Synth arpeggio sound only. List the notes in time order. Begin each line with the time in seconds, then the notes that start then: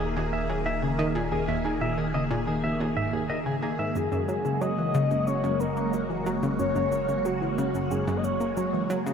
0.00 D#2
0.17 D#2
0.33 D#2
0.49 F#3
0.66 D#3
0.82 C#3
0.99 D#3
1.15 A#2
1.32 D#2
1.48 D#2
1.65 D#3
1.81 A#2
1.97 D#3
2.14 C#3
2.31 A#2
2.47 D#2
2.64 D#2
2.80 D#2
2.97 G#2
3.13 D#2
3.30 D#3
3.46 C#3
3.62 A#3
3.79 G#2
3.96 F#2
4.12 F#2
4.28 F#3
4.45 C#3
4.61 F#3
4.78 E3
4.95 C#3
5.11 F#2
5.27 F#2
5.44 F#2
5.60 F#2
5.77 A#3
5.94 F#3
6.10 E3
6.26 F#3
6.43 C#3
6.59 F#2
6.76 F#2
6.92 F#3
7.08 C#3
7.25 F#3
7.41 E3
7.58 C#3
7.75 F#2
7.91 F#2
8.08 F#2
8.24 F#2
8.41 A#3
8.57 F#3
8.74 E3
8.90 F#3
9.06 C#3